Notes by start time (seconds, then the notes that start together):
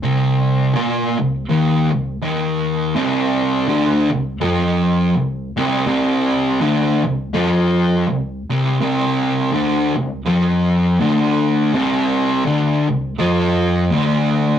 0.03 C2 C3
0.75 A#2 A#3
1.19 C2
1.50 D#2 D#3
1.92 C2
2.22 D#2 D#3
2.95 C2 C3
3.68 D2 D3
4.10 C2
4.41 F2 F3
5.15 C2
5.57 C2 C3
5.87 C2 C3
6.61 D2 D3
7.04 C2
7.33 F2 F3
8.08 C2
8.50 C2 C3
8.81 C2 C3
9.52 D2 D3
9.96 C2
10.27 F2 F3
10.99 D2 D3
11.73 C2 C3
12.46 D2 D3
12.89 C2
13.19 F2 F3
13.92 D2 D3